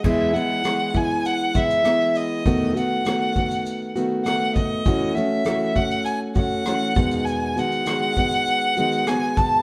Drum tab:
CC |x---------------|----------------|----------------|----------------|
SH |--x-x-x-x-xxx-x-|x-x-x-xxx-x-x-x-|x-x-x-xxx-x-x-xx|x-xxx-xxx-xxx-x-|
SD |----r-------rr--|----r-------rr--|----r-------r---|----r-------rr--|
BD |o-----o---o-----|o-----o-------o-|o-----o---o---o-|------o-------o-|